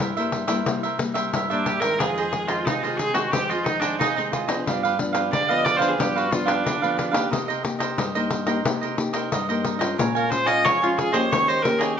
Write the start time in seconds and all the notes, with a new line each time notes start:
Already playing: G3 A#3 E4
0.00 G2 E4 A#4 C5 E5, pandeiro
0.17 G3 A#3 E4 A#4 C5 E5, pandeiro
0.32 pandeiro
0.47 G3 A#3 E4 A#4 C5 E5, pandeiro
0.66 C3 G3 A#3 E4, pandeiro
0.83 A#4 C5 E5, pandeiro
0.98 G3 A#3 E4, muted cavaquinho stroke, pandeiro
1.14 A#4 C5 E5, pandeiro
1.33 G2 E4 A#4 C5 E5, pandeiro
1.50 G3 A#3 D4 E4 A#4 C5 E5, pandeiro
1.65 E4 G4 A#4 C5 E5, pandeiro
1.80 D#3 G#3 C4 A#4 C5 E5, pandeiro
1.99 F2 F4 G#4 C5 D#5, pandeiro
2.17 G#4 C5 D#5, pandeiro
2.31 D#3 G#3 C4, muted cavaquinho stroke, pandeiro
2.48 F4 G#4 C5 D#5, pandeiro
2.66 C3 D#4 F4 G#4 C5 D#5, pandeiro
2.83 D#3 G#3 C4 F4 G#4 C5 D#5, pandeiro
2.98 G#4, pandeiro
3.14 D#3 G#3 C4 F#4 G#4 C5 D#5, pandeiro
3.31 F2 D#3 G#3 C4 G4, pandeiro
3.49 F4 G#4 C5 D#5, pandeiro
3.64 D#3 G#3 C4 D#4, muted cavaquinho stroke, pandeiro
3.80 D4 G#4 C5 D#5, pandeiro
3.99 C3 D#4 F4 G#4 C5 D#5, pandeiro
4.16 D#3 G#3 C4 G#4 C5 D#5, pandeiro
4.32 F4 G#4 C5 D#5, pandeiro
4.48 F3 B3 D4 G#4 C5 D#5, pandeiro
4.66 G2 D4 G4 B4 F5, pandeiro
4.83 G4 B4 F5, pandeiro
4.98 F3 B3 D4, muted cavaquinho stroke, pandeiro
5.13 G4 B4 F5, pandeiro
5.31 D3 D4 G4 B4 D5 F5, pandeiro
5.49 F3 B3 D4 G4 B4 D#5 F5, pandeiro
5.65 D5, pandeiro
5.77 F3 B3 B4 C5 F5
5.81 D4 G4, pandeiro
5.88 G#4
5.98 G2 F3 B3 D4 G4, pandeiro
6.15 F#4 G4 B4 F5, pandeiro
6.30 F3 B3 D4 F4, muted cavaquinho stroke, pandeiro
6.46 D4 G4 B4 F5, pandeiro
6.64 D3 D4 G4 B4 F5, pandeiro
6.82 F3 B3 D4 G4 B4 F5, pandeiro
6.97 D4 G4 B4 F5, pandeiro
7.11 A#3 D#4 G4 B4 F5, pandeiro
7.30 C3 D#4 A#4 C5 D#5, pandeiro
7.48 A#4 C5 D#5, pandeiro
7.63 A#3 D#4 G4, muted cavaquinho stroke, pandeiro
7.79 A#4 C5 D#5, pandeiro
7.98 G2 D#4 A#4 C5 D#5, pandeiro
8.15 A#3 D#4 G4 A#4 C5 D#5, pandeiro
8.31 pandeiro
8.47 A#3 D#4 G4 A#4 C5 D#5, pandeiro
8.64 C3 A#3 D#4 G4, pandeiro
8.81 A#4 C5 D#5, pandeiro
8.97 A#3 D#4 G4, muted cavaquinho stroke, pandeiro
9.13 A#4 C5 D#5, pandeiro
9.32 G2 D#4 A#4 C5 D#5, pandeiro
9.49 A#3 D#4 G4 A#4 C5 D#5, pandeiro
9.64 D#4 A#4 C5 D#5, pandeiro
9.79 G#3 C#4 F4 A#4 C5 D#5, pandeiro
9.98 A#2 A#4 C#5 F5 G#5, pandeiro
10.15 A#4 C#5 F5 G#5, pandeiro
10.30 G#3 C#4 F4 C5, muted cavaquinho stroke, pandeiro
10.46 C#5 D#5 F5 G#5, pandeiro
10.64 F2 A#4 C#5 F5 G#5, pandeiro
10.82 G#3 C#4 F4 C#5 F5 G#5, pandeiro
10.98 G#4, pandeiro
11.12 A#3 C#4 G4 C5 C#5 D#5, pandeiro
11.32 D#3 C#5, pandeiro
11.48 G4 C5 C#5 D#5, pandeiro
11.62 A#3 C#4 G4 A#4, muted cavaquinho stroke, pandeiro
11.79 G4 G#4 C#5 D#5, pandeiro
11.97 G4